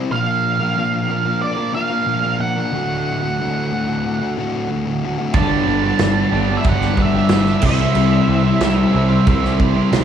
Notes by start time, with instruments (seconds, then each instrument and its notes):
Already playing: distorted electric guitar C4
0.11 distorted electric guitar A#2 F3 A#3 D4 F4 A#4, lead electric guitar F5
0.59 distorted electric guitar A#3 D4 F4 A#4
0.76 distorted electric guitar A#2 F3 A#3 D4 F4 A#4
1.08 distorted electric guitar A#3 D4 F4 A#4
1.25 distorted electric guitar A#3 D4 F4 A#4
1.42 lead electric guitar D5
1.56 distorted electric guitar A#3 D4 F4 A#4
1.73 distorted electric guitar A#3 D4 F4 A#4, lead electric guitar F5
1.89 distorted electric guitar A#3 D4 F4 A#4
2.06 distorted electric guitar A#2 F3 A#3 D4 F4 A#4
2.23 distorted electric guitar A#3 D4 F4 A#4
2.39 distorted electric guitar A#3 D4 F4 A#4, lead electric guitar F#5
2.55 distorted electric guitar A#3 D4 F4 A#4
2.71 distorted electric guitar D2 A2 D3 A3 F#4
3.21 distorted electric guitar D3 A3 F#4
3.38 distorted electric guitar D2 A2 D3 A3 F#4
3.71 distorted electric guitar A2 D3 A3 F#4
3.86 distorted electric guitar D3 A3 F#4
4.19 distorted electric guitar D3 A3 F#4
4.36 distorted electric guitar A2 D3 A3 F#4
4.52 distorted electric guitar D3 A3 F#4
4.69 distorted electric guitar D2 A2 D3 A3 F#4
4.85 distorted electric guitar D3 A3 F#4
5.02 distorted electric guitar A2 D3 A3 F#4
5.18 distorted electric guitar D3 A3 F#4
5.34 picked electric bass G1, distorted electric guitar G2 D3 G3 B3 D4 G4, lead electric guitar A5, kick, crash
5.66 picked electric bass G1, distorted electric guitar G3 B3 D4 G4
5.84 distorted electric guitar G3 B3 D4 G4
5.99 picked electric bass G1, distorted electric guitar G2 D3 G3 B3 D4, snare, crash
6.03 distorted electric guitar G4
6.31 picked electric bass G1, overdriven electric guitar G2 D3 G4, distorted electric guitar G3 B3 D4
6.36 distorted electric guitar G4
6.49 distorted electric guitar G3 B3 D4 G4
6.57 lead electric guitar E5
6.64 picked electric bass G1, distorted electric guitar G2 D3 G3 B3 D4 G4, kick, crash
6.69 lead electric guitar F#5
6.81 distorted electric guitar G3 B3 D4 G4, snare
6.97 picked electric bass G1, distorted electric guitar G3 B3 D4 G4, kick
7.02 lead electric guitar E5
7.15 distorted electric guitar G3 B3 D4 G4
7.29 picked electric bass G1, distorted electric guitar G2 D3 G3 B3 D4, snare, crash
7.33 distorted electric guitar G4
7.46 distorted electric guitar B3 D4 G4, snare
7.50 distorted electric guitar G3
7.62 picked electric bass C2, distorted electric guitar C3 G3 C4 E4 G4 C5, kick, crash
7.66 lead electric guitar E5
7.80 distorted electric guitar C4 E4 G4 C5
7.95 picked electric bass C2, distorted electric guitar C3 G3 C4 E4 G4 C5, crash
8.28 picked electric bass C2, distorted electric guitar C4 E4 G4 C5
8.44 distorted electric guitar C4 E4 G4 C5
8.60 picked electric bass C2, distorted electric guitar C3 G3 C4 E4 G4 C5, snare, crash
8.93 picked electric bass C2, distorted electric guitar C4 E4 G4 C5
9.09 distorted electric guitar C4 E4 G4 C5
9.26 picked electric bass C2, distorted electric guitar C3 G3 C4 E4 G4 C5, kick, crash
9.42 distorted electric guitar C4 E4 G4 C5, snare
9.58 distorted electric guitar C4 E4 G4 C5, kick
9.74 distorted electric guitar C4 E4 G4 C5
9.90 picked electric bass B1, distorted electric guitar C3 G3 C4 E4 G4 C5, snare, crash